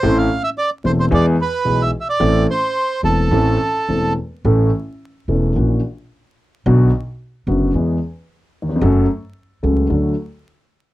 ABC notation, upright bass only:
X:1
M:4/4
L:1/8
Q:1/4=110
K:Am
V:1 name="Upright bass" clef=bass
A,,, z2 E,,, E,, z B,,, z | A,,, z2 E,,, A,,, z E,,, z | [K:A] A,,, z2 E,,, ^A,,, z3 | B,,, z2 F,,, E,, z3 |
F,,, z2 C,, D,, z3 |]